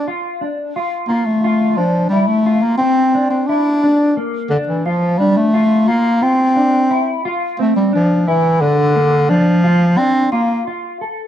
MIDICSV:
0, 0, Header, 1, 3, 480
1, 0, Start_track
1, 0, Tempo, 683371
1, 1014, Time_signature, 7, 3, 24, 8
1, 7919, End_track
2, 0, Start_track
2, 0, Title_t, "Clean electric guitar"
2, 0, Program_c, 0, 27
2, 54, Note_on_c, 0, 65, 79
2, 270, Note_off_c, 0, 65, 0
2, 289, Note_on_c, 0, 62, 71
2, 507, Note_off_c, 0, 62, 0
2, 534, Note_on_c, 0, 65, 76
2, 750, Note_off_c, 0, 65, 0
2, 772, Note_on_c, 0, 65, 77
2, 988, Note_off_c, 0, 65, 0
2, 1013, Note_on_c, 0, 65, 87
2, 1228, Note_off_c, 0, 65, 0
2, 1249, Note_on_c, 0, 62, 66
2, 1466, Note_off_c, 0, 62, 0
2, 1491, Note_on_c, 0, 64, 71
2, 1707, Note_off_c, 0, 64, 0
2, 1729, Note_on_c, 0, 65, 77
2, 1946, Note_off_c, 0, 65, 0
2, 1971, Note_on_c, 0, 60, 81
2, 2187, Note_off_c, 0, 60, 0
2, 2209, Note_on_c, 0, 62, 89
2, 2425, Note_off_c, 0, 62, 0
2, 2452, Note_on_c, 0, 64, 73
2, 2666, Note_off_c, 0, 64, 0
2, 2694, Note_on_c, 0, 62, 90
2, 2907, Note_off_c, 0, 62, 0
2, 2927, Note_on_c, 0, 58, 66
2, 3144, Note_off_c, 0, 58, 0
2, 3165, Note_on_c, 0, 62, 80
2, 3382, Note_off_c, 0, 62, 0
2, 3412, Note_on_c, 0, 65, 79
2, 3626, Note_off_c, 0, 65, 0
2, 3653, Note_on_c, 0, 62, 71
2, 3866, Note_off_c, 0, 62, 0
2, 3890, Note_on_c, 0, 65, 80
2, 4104, Note_off_c, 0, 65, 0
2, 4130, Note_on_c, 0, 65, 74
2, 4344, Note_off_c, 0, 65, 0
2, 4368, Note_on_c, 0, 65, 87
2, 4583, Note_off_c, 0, 65, 0
2, 4609, Note_on_c, 0, 62, 80
2, 4824, Note_off_c, 0, 62, 0
2, 4850, Note_on_c, 0, 64, 82
2, 5065, Note_off_c, 0, 64, 0
2, 5093, Note_on_c, 0, 65, 96
2, 5306, Note_off_c, 0, 65, 0
2, 5332, Note_on_c, 0, 60, 83
2, 5546, Note_off_c, 0, 60, 0
2, 5570, Note_on_c, 0, 62, 75
2, 5785, Note_off_c, 0, 62, 0
2, 5812, Note_on_c, 0, 64, 81
2, 6026, Note_off_c, 0, 64, 0
2, 6053, Note_on_c, 0, 62, 79
2, 6267, Note_off_c, 0, 62, 0
2, 6290, Note_on_c, 0, 58, 78
2, 6506, Note_off_c, 0, 58, 0
2, 6524, Note_on_c, 0, 62, 85
2, 6743, Note_off_c, 0, 62, 0
2, 6769, Note_on_c, 0, 65, 92
2, 6986, Note_off_c, 0, 65, 0
2, 7006, Note_on_c, 0, 62, 77
2, 7225, Note_off_c, 0, 62, 0
2, 7249, Note_on_c, 0, 65, 90
2, 7468, Note_off_c, 0, 65, 0
2, 7496, Note_on_c, 0, 65, 79
2, 7712, Note_off_c, 0, 65, 0
2, 7735, Note_on_c, 0, 69, 62
2, 7919, Note_off_c, 0, 69, 0
2, 7919, End_track
3, 0, Start_track
3, 0, Title_t, "Bass clarinet"
3, 0, Program_c, 1, 71
3, 761, Note_on_c, 1, 58, 80
3, 883, Note_on_c, 1, 57, 79
3, 894, Note_off_c, 1, 58, 0
3, 1243, Note_on_c, 1, 53, 80
3, 1254, Note_off_c, 1, 57, 0
3, 1466, Note_off_c, 1, 53, 0
3, 1470, Note_on_c, 1, 55, 83
3, 1596, Note_on_c, 1, 57, 81
3, 1606, Note_off_c, 1, 55, 0
3, 1844, Note_on_c, 1, 58, 88
3, 1854, Note_off_c, 1, 57, 0
3, 1949, Note_off_c, 1, 58, 0
3, 1953, Note_on_c, 1, 60, 97
3, 2295, Note_off_c, 1, 60, 0
3, 2321, Note_on_c, 1, 60, 82
3, 2438, Note_on_c, 1, 62, 104
3, 2449, Note_off_c, 1, 60, 0
3, 2923, Note_off_c, 1, 62, 0
3, 3161, Note_on_c, 1, 50, 77
3, 3216, Note_off_c, 1, 50, 0
3, 3284, Note_on_c, 1, 52, 73
3, 3409, Note_on_c, 1, 53, 89
3, 3419, Note_off_c, 1, 52, 0
3, 3643, Note_on_c, 1, 55, 87
3, 3653, Note_off_c, 1, 53, 0
3, 3770, Note_on_c, 1, 57, 98
3, 3780, Note_off_c, 1, 55, 0
3, 4133, Note_on_c, 1, 58, 107
3, 4144, Note_off_c, 1, 57, 0
3, 4373, Note_on_c, 1, 60, 103
3, 4384, Note_off_c, 1, 58, 0
3, 5090, Note_off_c, 1, 60, 0
3, 5339, Note_on_c, 1, 57, 89
3, 5445, Note_off_c, 1, 57, 0
3, 5455, Note_on_c, 1, 55, 78
3, 5563, Note_off_c, 1, 55, 0
3, 5587, Note_on_c, 1, 53, 81
3, 5815, Note_on_c, 1, 52, 90
3, 5825, Note_off_c, 1, 53, 0
3, 6052, Note_on_c, 1, 50, 97
3, 6062, Note_off_c, 1, 52, 0
3, 6533, Note_on_c, 1, 53, 102
3, 6543, Note_off_c, 1, 50, 0
3, 7012, Note_on_c, 1, 60, 106
3, 7022, Note_off_c, 1, 53, 0
3, 7245, Note_off_c, 1, 60, 0
3, 7249, Note_on_c, 1, 58, 83
3, 7475, Note_off_c, 1, 58, 0
3, 7919, End_track
0, 0, End_of_file